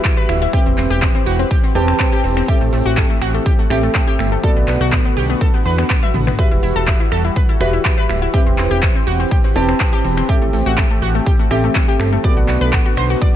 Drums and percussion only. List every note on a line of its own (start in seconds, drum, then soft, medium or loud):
0.05 kick loud
0.05 clap loud
0.05 closed hi-hat medium
0.17 closed hi-hat soft
0.29 finger snap medium
0.29 open hi-hat medium
0.42 closed hi-hat soft
0.53 kick loud
0.53 closed hi-hat medium
0.66 closed hi-hat soft
0.78 clap medium
0.78 open hi-hat loud
0.91 closed hi-hat soft
1.02 kick loud
1.02 clap loud
1.02 closed hi-hat medium
1.15 closed hi-hat soft
1.27 open hi-hat medium
1.39 closed hi-hat soft
1.51 kick loud
1.51 closed hi-hat medium
1.64 closed hi-hat soft
1.75 open hi-hat loud
1.88 finger snap medium
2.00 kick loud
2.00 clap loud
2.00 closed hi-hat medium
2.13 closed hi-hat soft
2.24 open hi-hat medium
2.37 finger snap medium
2.48 kick loud
2.48 closed hi-hat medium
2.61 closed hi-hat soft
2.73 open hi-hat loud
2.86 closed hi-hat soft
2.97 kick loud
2.97 clap loud
2.97 closed hi-hat medium
3.10 closed hi-hat soft
3.22 finger snap medium
3.22 open hi-hat medium
3.35 closed hi-hat soft
3.46 kick loud
3.46 closed hi-hat medium
3.59 closed hi-hat soft
3.70 finger snap medium
3.70 open hi-hat loud
3.83 closed hi-hat soft
3.95 kick loud
3.95 clap loud
3.95 closed hi-hat medium
4.08 closed hi-hat soft
4.19 finger snap medium
4.19 open hi-hat medium
4.32 closed hi-hat soft
4.44 kick loud
4.44 closed hi-hat medium
4.57 closed hi-hat soft
4.68 clap medium
4.68 open hi-hat loud
4.81 closed hi-hat soft
4.92 kick loud
4.92 clap loud
4.92 closed hi-hat medium
5.05 closed hi-hat soft
5.17 open hi-hat medium
5.30 closed hi-hat soft
5.41 kick loud
5.41 closed hi-hat medium
5.54 closed hi-hat soft
5.66 open hi-hat loud
5.78 finger snap medium
5.90 kick loud
5.90 clap loud
5.90 closed hi-hat medium
6.03 closed hi-hat soft
6.03 high tom medium
6.14 open hi-hat medium
6.14 mid tom medium
6.27 finger snap medium
6.27 closed hi-hat soft
6.27 mid tom medium
6.39 kick loud
6.39 closed hi-hat medium
6.52 closed hi-hat soft
6.63 open hi-hat loud
6.76 closed hi-hat soft
6.87 kick loud
6.87 clap loud
6.87 closed hi-hat medium
7.00 closed hi-hat soft
7.12 finger snap medium
7.12 open hi-hat medium
7.25 closed hi-hat soft
7.36 kick loud
7.36 closed hi-hat medium
7.49 closed hi-hat soft
7.61 finger snap medium
7.61 open hi-hat loud
7.74 closed hi-hat soft
7.85 kick loud
7.85 clap loud
7.85 closed hi-hat medium
7.98 closed hi-hat soft
8.09 finger snap medium
8.09 open hi-hat medium
8.22 closed hi-hat soft
8.34 kick loud
8.34 closed hi-hat medium
8.47 closed hi-hat soft
8.58 clap medium
8.58 open hi-hat loud
8.71 closed hi-hat soft
8.83 kick loud
8.83 clap loud
8.83 closed hi-hat medium
8.96 closed hi-hat soft
9.07 open hi-hat medium
9.20 closed hi-hat soft
9.31 kick loud
9.31 closed hi-hat medium
9.44 closed hi-hat soft
9.56 open hi-hat loud
9.69 finger snap medium
9.80 kick loud
9.80 clap loud
9.80 closed hi-hat medium
9.93 closed hi-hat soft
10.05 open hi-hat loud
10.17 finger snap medium
10.29 kick loud
10.29 closed hi-hat medium
10.42 closed hi-hat soft
10.53 open hi-hat loud
10.66 closed hi-hat soft
10.78 kick loud
10.78 clap loud
10.78 closed hi-hat medium
10.91 closed hi-hat soft
11.02 open hi-hat loud
11.15 closed hi-hat soft
11.26 kick loud
11.26 closed hi-hat medium
11.39 closed hi-hat soft
11.51 finger snap medium
11.51 open hi-hat loud
11.64 closed hi-hat soft
11.75 kick loud
11.75 clap loud
11.75 closed hi-hat medium
11.88 closed hi-hat soft
12.00 finger snap medium
12.00 open hi-hat loud
12.13 closed hi-hat soft
12.24 kick loud
12.24 closed hi-hat medium
12.37 closed hi-hat soft
12.48 clap medium
12.48 open hi-hat loud
12.61 closed hi-hat soft
12.73 kick loud
12.73 clap loud
12.73 closed hi-hat medium
12.86 closed hi-hat soft
12.97 finger snap medium
12.97 open hi-hat loud
13.10 closed hi-hat soft
13.22 kick loud
13.22 closed hi-hat medium